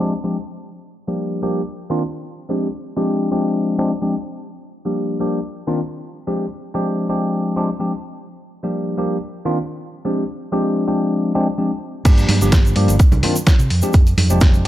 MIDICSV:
0, 0, Header, 1, 5, 480
1, 0, Start_track
1, 0, Tempo, 472441
1, 725, Time_signature, 4, 2, 24, 8
1, 14910, End_track
2, 0, Start_track
2, 0, Title_t, "Tine electric piano"
2, 0, Program_c, 0, 4
2, 0, Note_on_c, 0, 53, 90
2, 0, Note_on_c, 0, 56, 83
2, 2, Note_on_c, 0, 60, 85
2, 4, Note_on_c, 0, 62, 82
2, 5, Note_on_c, 0, 67, 95
2, 122, Note_off_c, 0, 53, 0
2, 123, Note_off_c, 0, 56, 0
2, 125, Note_off_c, 0, 60, 0
2, 126, Note_off_c, 0, 62, 0
2, 127, Note_off_c, 0, 67, 0
2, 238, Note_on_c, 0, 53, 77
2, 241, Note_on_c, 0, 56, 73
2, 243, Note_on_c, 0, 60, 74
2, 244, Note_on_c, 0, 62, 71
2, 247, Note_on_c, 0, 67, 89
2, 363, Note_off_c, 0, 53, 0
2, 365, Note_off_c, 0, 56, 0
2, 366, Note_off_c, 0, 60, 0
2, 366, Note_off_c, 0, 62, 0
2, 368, Note_off_c, 0, 67, 0
2, 1091, Note_on_c, 0, 53, 73
2, 1093, Note_on_c, 0, 55, 65
2, 1095, Note_on_c, 0, 58, 65
2, 1097, Note_on_c, 0, 62, 65
2, 1100, Note_on_c, 0, 67, 81
2, 1418, Note_off_c, 0, 53, 0
2, 1419, Note_off_c, 0, 55, 0
2, 1419, Note_off_c, 0, 58, 0
2, 1421, Note_off_c, 0, 62, 0
2, 1422, Note_off_c, 0, 67, 0
2, 1444, Note_on_c, 0, 53, 78
2, 1447, Note_on_c, 0, 55, 71
2, 1449, Note_on_c, 0, 58, 72
2, 1450, Note_on_c, 0, 62, 71
2, 1452, Note_on_c, 0, 67, 88
2, 1631, Note_off_c, 0, 53, 0
2, 1633, Note_off_c, 0, 55, 0
2, 1634, Note_off_c, 0, 58, 0
2, 1635, Note_off_c, 0, 62, 0
2, 1635, Note_off_c, 0, 67, 0
2, 1927, Note_on_c, 0, 51, 92
2, 1929, Note_on_c, 0, 58, 84
2, 1931, Note_on_c, 0, 60, 87
2, 1932, Note_on_c, 0, 62, 90
2, 1936, Note_on_c, 0, 65, 107
2, 2048, Note_off_c, 0, 51, 0
2, 2049, Note_off_c, 0, 58, 0
2, 2050, Note_off_c, 0, 60, 0
2, 2050, Note_off_c, 0, 62, 0
2, 2052, Note_off_c, 0, 65, 0
2, 2530, Note_on_c, 0, 53, 82
2, 2533, Note_on_c, 0, 56, 72
2, 2535, Note_on_c, 0, 60, 74
2, 2537, Note_on_c, 0, 62, 76
2, 2539, Note_on_c, 0, 67, 85
2, 2711, Note_off_c, 0, 53, 0
2, 2713, Note_off_c, 0, 56, 0
2, 2714, Note_off_c, 0, 60, 0
2, 2715, Note_off_c, 0, 62, 0
2, 2716, Note_off_c, 0, 67, 0
2, 3010, Note_on_c, 0, 53, 93
2, 3013, Note_on_c, 0, 56, 82
2, 3014, Note_on_c, 0, 60, 86
2, 3018, Note_on_c, 0, 62, 85
2, 3020, Note_on_c, 0, 67, 100
2, 3337, Note_off_c, 0, 53, 0
2, 3338, Note_off_c, 0, 56, 0
2, 3339, Note_off_c, 0, 60, 0
2, 3341, Note_off_c, 0, 62, 0
2, 3342, Note_off_c, 0, 67, 0
2, 3363, Note_on_c, 0, 53, 77
2, 3366, Note_on_c, 0, 56, 72
2, 3367, Note_on_c, 0, 60, 69
2, 3371, Note_on_c, 0, 62, 68
2, 3372, Note_on_c, 0, 67, 85
2, 3817, Note_off_c, 0, 53, 0
2, 3819, Note_off_c, 0, 56, 0
2, 3819, Note_off_c, 0, 60, 0
2, 3821, Note_off_c, 0, 62, 0
2, 3821, Note_off_c, 0, 67, 0
2, 3842, Note_on_c, 0, 53, 92
2, 3843, Note_on_c, 0, 56, 79
2, 3845, Note_on_c, 0, 60, 82
2, 3849, Note_on_c, 0, 62, 82
2, 3849, Note_on_c, 0, 67, 98
2, 3965, Note_off_c, 0, 53, 0
2, 3965, Note_off_c, 0, 56, 0
2, 3967, Note_off_c, 0, 60, 0
2, 3968, Note_off_c, 0, 62, 0
2, 3969, Note_off_c, 0, 67, 0
2, 4081, Note_on_c, 0, 53, 77
2, 4083, Note_on_c, 0, 56, 74
2, 4084, Note_on_c, 0, 60, 71
2, 4086, Note_on_c, 0, 62, 71
2, 4088, Note_on_c, 0, 67, 87
2, 4205, Note_off_c, 0, 53, 0
2, 4206, Note_off_c, 0, 56, 0
2, 4206, Note_off_c, 0, 60, 0
2, 4207, Note_off_c, 0, 62, 0
2, 4208, Note_off_c, 0, 67, 0
2, 4928, Note_on_c, 0, 53, 70
2, 4930, Note_on_c, 0, 55, 67
2, 4933, Note_on_c, 0, 58, 64
2, 4935, Note_on_c, 0, 62, 64
2, 4937, Note_on_c, 0, 67, 76
2, 5256, Note_off_c, 0, 53, 0
2, 5257, Note_off_c, 0, 55, 0
2, 5259, Note_off_c, 0, 58, 0
2, 5260, Note_off_c, 0, 62, 0
2, 5260, Note_off_c, 0, 67, 0
2, 5280, Note_on_c, 0, 53, 77
2, 5284, Note_on_c, 0, 55, 72
2, 5286, Note_on_c, 0, 58, 69
2, 5289, Note_on_c, 0, 62, 75
2, 5291, Note_on_c, 0, 67, 88
2, 5470, Note_off_c, 0, 53, 0
2, 5471, Note_off_c, 0, 55, 0
2, 5472, Note_off_c, 0, 58, 0
2, 5474, Note_off_c, 0, 62, 0
2, 5475, Note_off_c, 0, 67, 0
2, 5761, Note_on_c, 0, 51, 94
2, 5764, Note_on_c, 0, 58, 86
2, 5766, Note_on_c, 0, 60, 84
2, 5767, Note_on_c, 0, 62, 86
2, 5769, Note_on_c, 0, 65, 102
2, 5885, Note_off_c, 0, 51, 0
2, 5886, Note_off_c, 0, 58, 0
2, 5887, Note_off_c, 0, 60, 0
2, 5888, Note_off_c, 0, 62, 0
2, 5889, Note_off_c, 0, 65, 0
2, 6368, Note_on_c, 0, 53, 80
2, 6371, Note_on_c, 0, 56, 74
2, 6373, Note_on_c, 0, 60, 73
2, 6374, Note_on_c, 0, 62, 73
2, 6377, Note_on_c, 0, 67, 86
2, 6550, Note_off_c, 0, 53, 0
2, 6552, Note_off_c, 0, 56, 0
2, 6553, Note_off_c, 0, 60, 0
2, 6553, Note_off_c, 0, 62, 0
2, 6555, Note_off_c, 0, 67, 0
2, 6848, Note_on_c, 0, 56, 83
2, 6849, Note_on_c, 0, 53, 95
2, 6852, Note_on_c, 0, 60, 83
2, 6855, Note_on_c, 0, 62, 86
2, 6857, Note_on_c, 0, 67, 103
2, 7176, Note_off_c, 0, 56, 0
2, 7177, Note_off_c, 0, 53, 0
2, 7178, Note_off_c, 0, 60, 0
2, 7179, Note_off_c, 0, 62, 0
2, 7181, Note_off_c, 0, 67, 0
2, 7202, Note_on_c, 0, 53, 75
2, 7203, Note_on_c, 0, 56, 72
2, 7206, Note_on_c, 0, 60, 69
2, 7206, Note_on_c, 0, 62, 69
2, 7209, Note_on_c, 0, 67, 85
2, 7657, Note_off_c, 0, 53, 0
2, 7657, Note_off_c, 0, 56, 0
2, 7659, Note_off_c, 0, 60, 0
2, 7659, Note_off_c, 0, 62, 0
2, 7660, Note_off_c, 0, 67, 0
2, 7682, Note_on_c, 0, 53, 92
2, 7684, Note_on_c, 0, 56, 81
2, 7686, Note_on_c, 0, 60, 82
2, 7690, Note_on_c, 0, 62, 85
2, 7692, Note_on_c, 0, 67, 102
2, 7805, Note_off_c, 0, 53, 0
2, 7806, Note_off_c, 0, 56, 0
2, 7807, Note_off_c, 0, 60, 0
2, 7809, Note_off_c, 0, 62, 0
2, 7810, Note_off_c, 0, 67, 0
2, 7919, Note_on_c, 0, 53, 79
2, 7921, Note_on_c, 0, 56, 70
2, 7924, Note_on_c, 0, 60, 72
2, 7927, Note_on_c, 0, 62, 74
2, 7928, Note_on_c, 0, 67, 88
2, 8044, Note_off_c, 0, 53, 0
2, 8045, Note_off_c, 0, 56, 0
2, 8046, Note_off_c, 0, 60, 0
2, 8048, Note_off_c, 0, 62, 0
2, 8048, Note_off_c, 0, 67, 0
2, 8769, Note_on_c, 0, 53, 72
2, 8770, Note_on_c, 0, 55, 68
2, 8773, Note_on_c, 0, 58, 67
2, 8775, Note_on_c, 0, 62, 69
2, 8778, Note_on_c, 0, 67, 80
2, 9097, Note_off_c, 0, 53, 0
2, 9097, Note_off_c, 0, 55, 0
2, 9098, Note_off_c, 0, 58, 0
2, 9100, Note_off_c, 0, 62, 0
2, 9101, Note_off_c, 0, 67, 0
2, 9120, Note_on_c, 0, 53, 77
2, 9122, Note_on_c, 0, 55, 72
2, 9124, Note_on_c, 0, 58, 72
2, 9126, Note_on_c, 0, 62, 71
2, 9128, Note_on_c, 0, 67, 87
2, 9310, Note_off_c, 0, 53, 0
2, 9310, Note_off_c, 0, 55, 0
2, 9311, Note_off_c, 0, 58, 0
2, 9313, Note_off_c, 0, 62, 0
2, 9314, Note_off_c, 0, 67, 0
2, 9602, Note_on_c, 0, 51, 96
2, 9603, Note_on_c, 0, 58, 84
2, 9607, Note_on_c, 0, 60, 86
2, 9607, Note_on_c, 0, 62, 87
2, 9610, Note_on_c, 0, 65, 108
2, 9725, Note_off_c, 0, 51, 0
2, 9726, Note_off_c, 0, 58, 0
2, 9728, Note_off_c, 0, 60, 0
2, 9728, Note_off_c, 0, 62, 0
2, 9729, Note_off_c, 0, 65, 0
2, 10209, Note_on_c, 0, 53, 81
2, 10210, Note_on_c, 0, 56, 74
2, 10213, Note_on_c, 0, 60, 74
2, 10216, Note_on_c, 0, 62, 76
2, 10217, Note_on_c, 0, 67, 89
2, 10391, Note_off_c, 0, 53, 0
2, 10391, Note_off_c, 0, 56, 0
2, 10393, Note_off_c, 0, 60, 0
2, 10394, Note_off_c, 0, 62, 0
2, 10395, Note_off_c, 0, 67, 0
2, 10689, Note_on_c, 0, 53, 94
2, 10691, Note_on_c, 0, 56, 88
2, 10692, Note_on_c, 0, 60, 88
2, 10695, Note_on_c, 0, 62, 86
2, 10696, Note_on_c, 0, 67, 102
2, 11017, Note_off_c, 0, 53, 0
2, 11018, Note_off_c, 0, 56, 0
2, 11018, Note_off_c, 0, 60, 0
2, 11020, Note_off_c, 0, 62, 0
2, 11020, Note_off_c, 0, 67, 0
2, 11044, Note_on_c, 0, 53, 80
2, 11047, Note_on_c, 0, 56, 69
2, 11049, Note_on_c, 0, 60, 69
2, 11050, Note_on_c, 0, 62, 71
2, 11051, Note_on_c, 0, 67, 83
2, 11498, Note_off_c, 0, 53, 0
2, 11499, Note_off_c, 0, 56, 0
2, 11500, Note_off_c, 0, 60, 0
2, 11501, Note_off_c, 0, 62, 0
2, 11501, Note_off_c, 0, 67, 0
2, 11528, Note_on_c, 0, 53, 90
2, 11528, Note_on_c, 0, 56, 85
2, 11529, Note_on_c, 0, 60, 83
2, 11534, Note_on_c, 0, 62, 85
2, 11534, Note_on_c, 0, 67, 99
2, 11648, Note_off_c, 0, 53, 0
2, 11648, Note_off_c, 0, 56, 0
2, 11649, Note_off_c, 0, 60, 0
2, 11651, Note_off_c, 0, 62, 0
2, 11651, Note_off_c, 0, 67, 0
2, 11762, Note_on_c, 0, 53, 82
2, 11767, Note_on_c, 0, 56, 72
2, 11767, Note_on_c, 0, 60, 71
2, 11770, Note_on_c, 0, 62, 73
2, 11771, Note_on_c, 0, 67, 86
2, 11885, Note_off_c, 0, 53, 0
2, 11888, Note_off_c, 0, 56, 0
2, 11888, Note_off_c, 0, 60, 0
2, 11889, Note_off_c, 0, 62, 0
2, 11890, Note_off_c, 0, 67, 0
2, 12240, Note_on_c, 0, 53, 97
2, 12244, Note_on_c, 0, 55, 93
2, 12246, Note_on_c, 0, 58, 89
2, 12247, Note_on_c, 0, 62, 91
2, 12248, Note_on_c, 0, 67, 110
2, 12559, Note_off_c, 0, 53, 0
2, 12561, Note_off_c, 0, 55, 0
2, 12562, Note_off_c, 0, 58, 0
2, 12563, Note_off_c, 0, 62, 0
2, 12563, Note_off_c, 0, 67, 0
2, 12610, Note_on_c, 0, 53, 76
2, 12613, Note_on_c, 0, 55, 72
2, 12614, Note_on_c, 0, 58, 70
2, 12616, Note_on_c, 0, 62, 69
2, 12617, Note_on_c, 0, 67, 88
2, 12937, Note_off_c, 0, 53, 0
2, 12939, Note_off_c, 0, 55, 0
2, 12939, Note_off_c, 0, 58, 0
2, 12940, Note_off_c, 0, 62, 0
2, 12941, Note_off_c, 0, 67, 0
2, 12962, Note_on_c, 0, 53, 83
2, 12965, Note_on_c, 0, 55, 74
2, 12967, Note_on_c, 0, 58, 79
2, 12968, Note_on_c, 0, 62, 79
2, 12970, Note_on_c, 0, 67, 92
2, 13150, Note_off_c, 0, 53, 0
2, 13152, Note_off_c, 0, 55, 0
2, 13153, Note_off_c, 0, 58, 0
2, 13153, Note_off_c, 0, 62, 0
2, 13154, Note_off_c, 0, 67, 0
2, 13441, Note_on_c, 0, 51, 99
2, 13443, Note_on_c, 0, 58, 91
2, 13446, Note_on_c, 0, 60, 90
2, 13447, Note_on_c, 0, 62, 93
2, 13451, Note_on_c, 0, 65, 112
2, 13565, Note_off_c, 0, 51, 0
2, 13566, Note_off_c, 0, 58, 0
2, 13567, Note_off_c, 0, 60, 0
2, 13568, Note_off_c, 0, 62, 0
2, 13570, Note_off_c, 0, 65, 0
2, 14045, Note_on_c, 0, 53, 84
2, 14047, Note_on_c, 0, 56, 79
2, 14049, Note_on_c, 0, 60, 81
2, 14050, Note_on_c, 0, 62, 79
2, 14055, Note_on_c, 0, 67, 94
2, 14229, Note_off_c, 0, 53, 0
2, 14230, Note_off_c, 0, 56, 0
2, 14231, Note_off_c, 0, 60, 0
2, 14231, Note_off_c, 0, 62, 0
2, 14234, Note_off_c, 0, 67, 0
2, 14528, Note_on_c, 0, 53, 100
2, 14530, Note_on_c, 0, 56, 94
2, 14533, Note_on_c, 0, 60, 90
2, 14535, Note_on_c, 0, 62, 93
2, 14538, Note_on_c, 0, 67, 107
2, 14856, Note_off_c, 0, 53, 0
2, 14857, Note_off_c, 0, 56, 0
2, 14859, Note_off_c, 0, 60, 0
2, 14859, Note_off_c, 0, 62, 0
2, 14861, Note_off_c, 0, 67, 0
2, 14910, End_track
3, 0, Start_track
3, 0, Title_t, "Fingered electric bass"
3, 0, Program_c, 1, 33
3, 12245, Note_on_c, 1, 43, 102
3, 12443, Note_off_c, 1, 43, 0
3, 12486, Note_on_c, 1, 43, 85
3, 12589, Note_off_c, 1, 43, 0
3, 12610, Note_on_c, 1, 31, 102
3, 12931, Note_off_c, 1, 31, 0
3, 12962, Note_on_c, 1, 43, 100
3, 13067, Note_off_c, 1, 43, 0
3, 13088, Note_on_c, 1, 31, 100
3, 13182, Note_off_c, 1, 31, 0
3, 13330, Note_on_c, 1, 36, 101
3, 13423, Note_off_c, 1, 36, 0
3, 13810, Note_on_c, 1, 48, 94
3, 13903, Note_off_c, 1, 48, 0
3, 13926, Note_on_c, 1, 41, 89
3, 14029, Note_off_c, 1, 41, 0
3, 14164, Note_on_c, 1, 41, 105
3, 14363, Note_off_c, 1, 41, 0
3, 14404, Note_on_c, 1, 41, 90
3, 14508, Note_off_c, 1, 41, 0
3, 14533, Note_on_c, 1, 29, 108
3, 14852, Note_off_c, 1, 29, 0
3, 14910, End_track
4, 0, Start_track
4, 0, Title_t, "Muted fingered electric bass strokes"
4, 13205, Note_on_c, 9, 29, 45
4, 13306, Note_off_c, 9, 29, 0
4, 14910, End_track
5, 0, Start_track
5, 0, Title_t, "Drums"
5, 12243, Note_on_c, 9, 42, 85
5, 12243, Note_on_c, 9, 49, 106
5, 12246, Note_on_c, 9, 36, 116
5, 12250, Note_on_c, 9, 82, 70
5, 12345, Note_off_c, 9, 42, 0
5, 12345, Note_off_c, 9, 49, 0
5, 12347, Note_off_c, 9, 36, 0
5, 12351, Note_off_c, 9, 82, 0
5, 12370, Note_on_c, 9, 42, 54
5, 12377, Note_on_c, 9, 82, 38
5, 12472, Note_off_c, 9, 42, 0
5, 12479, Note_off_c, 9, 82, 0
5, 12483, Note_on_c, 9, 46, 108
5, 12486, Note_on_c, 9, 64, 91
5, 12584, Note_off_c, 9, 46, 0
5, 12588, Note_off_c, 9, 64, 0
5, 12610, Note_on_c, 9, 42, 37
5, 12614, Note_on_c, 9, 82, 78
5, 12711, Note_off_c, 9, 42, 0
5, 12715, Note_off_c, 9, 82, 0
5, 12722, Note_on_c, 9, 38, 119
5, 12722, Note_on_c, 9, 42, 85
5, 12724, Note_on_c, 9, 82, 71
5, 12725, Note_on_c, 9, 36, 101
5, 12823, Note_off_c, 9, 38, 0
5, 12823, Note_off_c, 9, 42, 0
5, 12825, Note_off_c, 9, 82, 0
5, 12827, Note_off_c, 9, 36, 0
5, 12851, Note_on_c, 9, 42, 37
5, 12866, Note_on_c, 9, 82, 44
5, 12953, Note_off_c, 9, 42, 0
5, 12962, Note_on_c, 9, 46, 90
5, 12968, Note_off_c, 9, 82, 0
5, 13063, Note_off_c, 9, 46, 0
5, 13088, Note_on_c, 9, 42, 54
5, 13099, Note_on_c, 9, 82, 79
5, 13190, Note_off_c, 9, 42, 0
5, 13201, Note_off_c, 9, 82, 0
5, 13202, Note_on_c, 9, 42, 81
5, 13205, Note_on_c, 9, 36, 127
5, 13207, Note_on_c, 9, 82, 78
5, 13303, Note_off_c, 9, 42, 0
5, 13307, Note_off_c, 9, 36, 0
5, 13308, Note_off_c, 9, 82, 0
5, 13329, Note_on_c, 9, 64, 96
5, 13329, Note_on_c, 9, 82, 37
5, 13331, Note_on_c, 9, 42, 37
5, 13431, Note_off_c, 9, 64, 0
5, 13431, Note_off_c, 9, 82, 0
5, 13432, Note_off_c, 9, 42, 0
5, 13441, Note_on_c, 9, 46, 106
5, 13444, Note_on_c, 9, 64, 84
5, 13543, Note_off_c, 9, 46, 0
5, 13546, Note_off_c, 9, 64, 0
5, 13570, Note_on_c, 9, 42, 37
5, 13571, Note_on_c, 9, 82, 89
5, 13671, Note_off_c, 9, 42, 0
5, 13673, Note_off_c, 9, 82, 0
5, 13682, Note_on_c, 9, 38, 126
5, 13682, Note_on_c, 9, 42, 83
5, 13685, Note_on_c, 9, 36, 107
5, 13685, Note_on_c, 9, 82, 73
5, 13783, Note_off_c, 9, 38, 0
5, 13783, Note_off_c, 9, 42, 0
5, 13786, Note_off_c, 9, 36, 0
5, 13787, Note_off_c, 9, 82, 0
5, 13810, Note_on_c, 9, 42, 39
5, 13812, Note_on_c, 9, 82, 41
5, 13911, Note_off_c, 9, 42, 0
5, 13914, Note_off_c, 9, 82, 0
5, 13923, Note_on_c, 9, 46, 89
5, 14025, Note_off_c, 9, 46, 0
5, 14040, Note_on_c, 9, 82, 80
5, 14052, Note_on_c, 9, 42, 38
5, 14141, Note_off_c, 9, 82, 0
5, 14154, Note_off_c, 9, 42, 0
5, 14156, Note_on_c, 9, 82, 66
5, 14165, Note_on_c, 9, 36, 124
5, 14165, Note_on_c, 9, 42, 84
5, 14257, Note_off_c, 9, 82, 0
5, 14266, Note_off_c, 9, 36, 0
5, 14267, Note_off_c, 9, 42, 0
5, 14291, Note_on_c, 9, 82, 42
5, 14293, Note_on_c, 9, 42, 52
5, 14392, Note_off_c, 9, 82, 0
5, 14394, Note_off_c, 9, 42, 0
5, 14403, Note_on_c, 9, 64, 83
5, 14404, Note_on_c, 9, 46, 113
5, 14505, Note_off_c, 9, 64, 0
5, 14506, Note_off_c, 9, 46, 0
5, 14527, Note_on_c, 9, 82, 73
5, 14530, Note_on_c, 9, 42, 36
5, 14628, Note_off_c, 9, 82, 0
5, 14632, Note_off_c, 9, 42, 0
5, 14638, Note_on_c, 9, 82, 73
5, 14644, Note_on_c, 9, 36, 114
5, 14644, Note_on_c, 9, 38, 124
5, 14644, Note_on_c, 9, 42, 78
5, 14739, Note_off_c, 9, 82, 0
5, 14745, Note_off_c, 9, 38, 0
5, 14745, Note_off_c, 9, 42, 0
5, 14746, Note_off_c, 9, 36, 0
5, 14771, Note_on_c, 9, 42, 36
5, 14771, Note_on_c, 9, 82, 37
5, 14873, Note_off_c, 9, 42, 0
5, 14873, Note_off_c, 9, 82, 0
5, 14910, End_track
0, 0, End_of_file